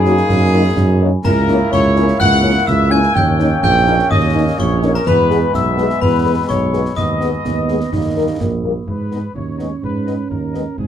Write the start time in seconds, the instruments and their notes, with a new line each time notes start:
Already playing: tuba F#2, trombone section A#3 D#4, woodwind section G#4, trumpet section G#4, glockenspiel G#5
0.06 french horn section F#3 A#3 D#4, snare
0.17 snare
0.29 tuba F#2, concert bass drum, snare
0.54 french horn section F#3 A#3 D#4
0.76 tuba F#2, concert bass drum, snare
1.01 french horn section F#3 A#3 D#4
1.24 tuba C#2, trombone section A#3 E4, trumpet section A#4, woodwind section A#4, glockenspiel A#5, concert bass drum, snare, crash
1.48 french horn section A#3 C#4 E4, snare
1.72 tuba C#2, woodwind section C#5, trumpet section C#5, glockenspiel C#6, concert bass drum, snare
1.96 french horn section A#3 C#4 E4, snare
2.08 snare
2.19 tuba C#2, trumpet section F#5, woodwind section F#5, glockenspiel F#6, concert bass drum, snare
2.43 french horn section A#3 C#4 E4
2.67 tuba C#2, trumpet section E5, woodwind section E5, glockenspiel E6, concert bass drum, snare
2.91 french horn section A#3 C#4 E4, woodwind section G#5, trumpet section G#5, glockenspiel G#6, snare
3.03 snare
3.14 tuba D#2, trombone section A#3 C#4, trumpet section G5, woodwind section G5, glockenspiel G6, concert bass drum, snare
3.39 french horn section A#3 C#4 D#4, snare
3.63 tuba A#1, woodwind section G5, trumpet section G5, glockenspiel G6, concert bass drum, snare
3.87 french horn section A#3 C#4 D#4, snare
3.99 snare
4.10 tuba D#2, woodwind section D#5, trumpet section D#5, glockenspiel D#6, concert bass drum, snare
4.35 french horn section A#3 C#4 D#4
4.58 tuba A#1, woodwind section C#5, trumpet section C#5, glockenspiel C#6, concert bass drum, snare
4.83 french horn section A#3 C#4 D#4, snare
4.94 woodwind section A#4, trumpet section A#4, glockenspiel A#5, snare
5.06 tuba E2, trombone section G#3 B3, woodwind section B4, trumpet section B4, glockenspiel B5, concert bass drum, snare, crash
5.29 french horn section G#3 B3 G#4, snare
5.53 tuba B1, woodwind section E5, trumpet section E5, glockenspiel E6, concert bass drum, snare
5.77 french horn section G#3 B3 G#4, snare
5.90 snare
6.01 tuba E2, trumpet section B4, woodwind section B4, glockenspiel B5, concert bass drum, snare
6.25 french horn section G#3 B3 G#4
6.49 tuba B1, trumpet section C#5, woodwind section C#5, glockenspiel C#6, concert bass drum, snare
6.73 french horn section G#3 B3 G#4, snare
6.86 snare
6.96 tuba D#2, trombone section G#3 B3, trumpet section D#5, woodwind section D#5, glockenspiel D#6, concert bass drum, snare
7.21 french horn section G#3 B3 G#4, snare
7.44 tuba D#2, euphonium B3, concert bass drum, snare
7.69 french horn section G#3 B3 G#4, snare
7.81 snare
7.92 tuba D#2, trombone section G3 A#3, euphonium D#4, concert bass drum, snare
8.17 french horn section G3 A#3 A#4
8.40 tuba A#1, euphonium A#3, concert bass drum, snare
8.64 french horn section G3 A#3 A#4
8.87 tuba G#2, trumpet section B4, concert bass drum
9.11 french horn section G#3 B3 D#4, woodwind section D#4 D#5, snare
9.35 tuba D#2, euphonium C#4, trumpet section C#5, concert bass drum
9.58 french horn section G#3 B3 D#4, woodwind section D#4 D#5, snare
9.82 tuba G#2, trumpet section B4, concert bass drum
10.05 french horn section G#3 B3 D#4, woodwind section D#4 D#5, snare
10.30 tuba D#2, trumpet section A#4, concert bass drum
10.53 french horn section G#3 B3 D#4, woodwind section D#4 D#5, snare
10.77 tuba G#2, euphonium C4, trumpet section G#4, concert bass drum